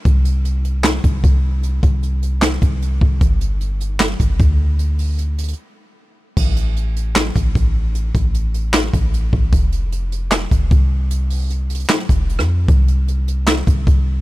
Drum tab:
CC |--------------------------------|--------------------------------|--------------------------------|--------------------------------|
HH |x---x---x---x---x---x---x-------|x---x---x---x---x---x---x-------|x---x---x---x---x---x---x-------|x---o---x---xxxx----------------|
CP |----------------x---------------|----------------x---------------|----------------x---------------|--------------------------------|
SD |----------------o---------------|----------------o---------------|----------------o---------------|--------------------------------|
BD |o-------------------o---o-------|----o---------------o-------o---|o-------------------o---o-------|--------------------------------|

CC |x-------------------------------|--------------------------------|--------------------------------|--------------------------------|
HH |----x---x---x---x---x---x-------|x---x---x---x---x---x---x-------|x---x---x---x---x---x---x-------|x---o---x---xxxxx---x---x-------|
CP |----------------x---------------|----------------x---------------|----------------x---------------|----------------x---------------|
SD |----------------o---------------|----------------o---------------|----------------o---------------|----------------o---------r-----|
BD |o-------------------o---o-------|----o---------------o-------o---|o-------------------o---o-------|--------------------o-----------|

CC |--------------------------------|
HH |x---x---x---x---x---x---x-------|
CP |----------------x---------------|
SD |----------------o---------------|
BD |o-------------------o---o-------|